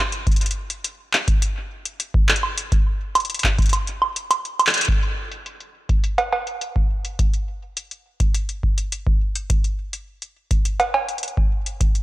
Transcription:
0.12 closed hi-hat
0.27 kick, closed hi-hat
0.32 closed hi-hat
0.36 closed hi-hat
0.41 closed hi-hat
0.46 closed hi-hat
0.51 closed hi-hat
0.70 closed hi-hat
0.84 closed hi-hat
1.13 clap
1.28 kick, closed hi-hat
1.42 closed hi-hat
1.85 closed hi-hat
2.00 closed hi-hat
2.14 kick
2.29 clap
2.36 closed hi-hat
2.43 high woodblock
2.58 closed hi-hat
2.72 kick, closed hi-hat
3.15 closed hi-hat, high woodblock
3.20 closed hi-hat
3.25 closed hi-hat
3.30 closed hi-hat
3.34 closed hi-hat
3.39 closed hi-hat
3.44 kick, clap
3.59 kick, closed hi-hat
3.62 closed hi-hat
3.66 closed hi-hat
3.69 closed hi-hat
3.73 closed hi-hat, high woodblock
3.87 closed hi-hat
4.02 high woodblock
4.16 closed hi-hat
4.31 closed hi-hat, high woodblock
4.45 closed hi-hat
4.59 closed hi-hat, high woodblock
4.67 clap, closed hi-hat
4.70 closed hi-hat
4.74 closed hi-hat
4.78 closed hi-hat
4.81 closed hi-hat
4.85 kick, closed hi-hat
4.88 closed hi-hat
5.03 closed hi-hat
5.32 closed hi-hat
5.46 closed hi-hat
5.60 closed hi-hat
5.89 kick, closed hi-hat
6.04 closed hi-hat
6.18 closed hi-hat, cowbell
6.33 cowbell
6.47 closed hi-hat
6.61 closed hi-hat
6.76 kick
7.05 closed hi-hat
7.19 kick, closed hi-hat
7.34 closed hi-hat
7.77 closed hi-hat
7.91 closed hi-hat
8.20 kick, closed hi-hat
8.34 closed hi-hat
8.49 closed hi-hat
8.63 kick
8.78 closed hi-hat
8.92 closed hi-hat
9.07 kick
9.35 closed hi-hat
9.50 kick, closed hi-hat
9.64 closed hi-hat
9.93 closed hi-hat
10.22 closed hi-hat
10.51 kick, closed hi-hat
10.65 closed hi-hat
10.80 closed hi-hat, cowbell
10.94 cowbell
11.09 closed hi-hat
11.18 closed hi-hat
11.23 closed hi-hat
11.28 closed hi-hat
11.37 kick
11.66 closed hi-hat
11.81 kick, closed hi-hat
11.95 closed hi-hat

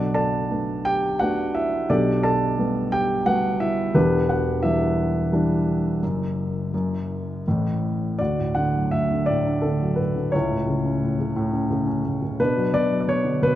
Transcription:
Already playing: B1 B2 D4 F#4 A4 D5
0.14 A4 D5 A5
0.51 A3 B3 D4
0.85 G4 G5
1.19 A3 B3 D4 F#4 F#5
1.55 E4 E5
1.89 B1 B2 D4 G4 A4 D5
2.23 A4 D5 A5
2.58 G3 A3 B3
2.92 G4 G5
3.26 G3 A3 B3 F#4 F#5
3.60 E4 E5
3.94 E1 E2 B3 D4 G4 B4
4.29 F#4 F#5
4.63 E3 G3 D4 E4 G4 E5
5.32 E3 G3 D4
6.03 F#1 F#2
6.73 F#1 F#2
7.48 A1 A2
8.19 D2 F#4 D5
8.39 A2
8.55 D3 F#5
8.74 F#3
8.91 A2 E5
9.11 D3
9.26 A2 D5
9.47 D4
9.62 D3 A4
9.82 F#3
9.96 A2 B4
10.16 D3
10.32 C#2 C#5
10.36 E4
10.51 A2
10.67 C#3
10.85 C#4
11.02 A2
11.19 C#3
11.36 A2
11.53 C#4
11.70 C#3
11.87 C#4
12.05 A2
12.22 C#3
12.40 B2 D4 B4
12.57 F#3
12.73 B2 D5
12.91 F#3
13.01 D5
13.08 B2 C#5
13.25 D3
13.42 B2 B4

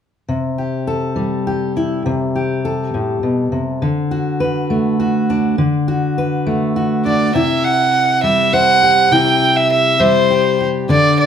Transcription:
0.29 C3
0.58 G4
0.87 A4
1.16 G3
1.47 G4
1.77 E4
2.06 C3
2.35 G4
2.65 A4
2.94 A2
3.23 B2
3.52 C3
3.82 D3
4.11 F#4
4.40 B4
4.70 A3
5.00 F#4
5.30 D4
5.58 D3
5.88 F#4
6.18 B4
6.46 A3
6.76 F#4
7.05 D4 D5
7.35 C3 E4 E5
7.57 E5
7.64 F#5
8.23 G3 E5
8.53 C5 F#5
8.83 G4
9.11 C3 E4 G5
9.56 E5
9.72 E5
10.00 G3 C5
10.30 G4
10.60 G4
10.89 D3 D4 D5
11.19 D5

